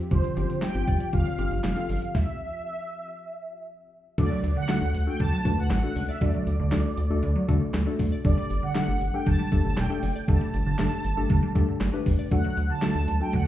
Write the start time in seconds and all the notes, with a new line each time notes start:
Already playing: F3 C4
0.11 G1 D3 C4 F4 G4 C5, kick, closed hi-hat
0.24 D3, closed hi-hat
0.37 G1 D3 C4 F4 G4, closed hi-hat
0.50 D3, closed hi-hat
0.62 G5, snare, clap, closed hi-hat
0.75 G1 C4 F4 G4, closed hi-hat
0.88 G1 D5, kick, open hi-hat
1.00 D5, closed hi-hat
1.13 G1 D3 C4 F4 G4 F5, kick, closed hi-hat
1.26 D3, closed hi-hat
1.38 G1 D3 C4 F4 G4, closed hi-hat
1.51 G1 D3, closed hi-hat
1.64 F1 G3 F5, snare, clap, closed hi-hat
1.76 C4 F4 A4, closed hi-hat
1.89 G1 D3, open hi-hat
2.02 closed hi-hat
2.14 E5, kick, snare
4.18 D2 D3 A3 D4 F#4 A4 D5, kick, closed hi-hat, crash
4.31 F#3
4.43 D2, closed hi-hat
4.56 D3 F#5
4.69 D3 A3 D4 F#4 A4, snare, clap, closed hi-hat
4.82 D2
4.94 D2, closed hi-hat
5.07 A3 D4 F#4 A4 G5
5.20 D2 D3 A5, kick, closed hi-hat
5.32 F#3
5.45 D2 D3 A3 D4 F#4 B4, kick, closed hi-hat
5.58 D2 D3 F#5
5.70 A1 D3 F#5, snare, clap, closed hi-hat
5.83 D3 A3 D4 F#4 A4
5.96 C#2 D3, open hi-hat
6.09 D5 E5
6.21 D2 D3 A3 D4 F#4 A4 D5, kick, closed hi-hat
6.34 F#3
6.47 D2, closed hi-hat
6.60 D2 D3
6.72 D2 D3 A3 D4 F#4 A4, snare, clap, closed hi-hat
6.97 D2, closed hi-hat
7.10 D2 A3 D4 F#4 A4
7.23 D2 D3, closed hi-hat
7.36 F#3
7.48 D3 A3 D4 F#4 A4, kick, closed hi-hat
7.61 D3
7.74 D2 D3, snare, clap, closed hi-hat
7.86 D3 A3 D4 F#4 A4
7.99 D2 D3, kick, open hi-hat
8.12 D5
8.25 G1 D3 A3 D4 G4 A4 D5, kick, closed hi-hat
8.37 G3
8.50 G1, closed hi-hat
8.63 D3 F#5
8.75 D3 A3 D4 G4 A4, snare, clap, closed hi-hat
8.88 G1
9.01 G1, closed hi-hat
9.14 A3 D4 G4 A4 G5
9.26 G1 D3 A5, kick, closed hi-hat
9.39 G3
9.52 G1 D3 A3 D4 G4 A4, kick, closed hi-hat
9.65 G1 D3 A5
9.77 E1 D3 G5, snare, clap, closed hi-hat
9.90 D3 A3 D4 G4 A4
10.03 F#1 D3, open hi-hat
10.16 D5 G5
10.28 G1 D3 A3 D4 G4 A4 A5, kick, closed hi-hat
10.41 G3
10.54 G1, closed hi-hat
10.66 G1 D3
10.79 G1 D3 A3 D4 G4 A4, snare, clap, closed hi-hat
11.04 G1, closed hi-hat
11.17 G1 A3 D4 G4 A4
11.30 G1 D3, kick, closed hi-hat
11.43 G3
11.55 G2 D3 A3 D4 G4 A4, kick, closed hi-hat
11.68 D3
11.81 G1 D3, snare, clap, closed hi-hat
11.93 D3 A3 D4 G4 B4
12.06 G1 D3, kick, open hi-hat
12.19 D5
12.31 D2 D3 F#3 A3 D4 F#4 A4 F#5, kick, closed hi-hat
12.44 F#3
12.57 D2, closed hi-hat
12.70 D3 A5
12.82 D3 A3 D4 F#4 A4, snare, clap, closed hi-hat
12.95 D2
13.08 D2, closed hi-hat
13.20 A3 D4 F#4 A4 G5
13.33 D2 D3 F#5, kick, closed hi-hat